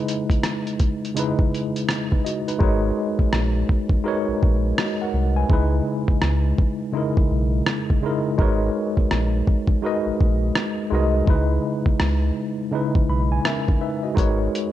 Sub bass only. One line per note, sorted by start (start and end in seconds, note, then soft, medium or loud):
2.61 2.92 G#1 loud
3.33 3.64 A#1 loud
4.28 4.33 A#1 soft
4.43 4.73 A#1 medium
5.13 5.44 C2 medium
5.50 5.81 C#2 loud
6.23 6.53 C#2 loud
7.17 7.23 B1 medium
7.31 7.62 B1 medium
8.39 8.70 G#1 loud
9.12 9.42 A#1 loud
10.06 10.11 A#1 medium
10.21 10.51 A#1 medium
10.91 11.22 C2 medium
11.28 11.59 C#2 loud
12.00 12.31 C#2 loud
12.95 13.01 B1 soft
13.09 13.40 B1 medium
14.18 14.48 G#1 loud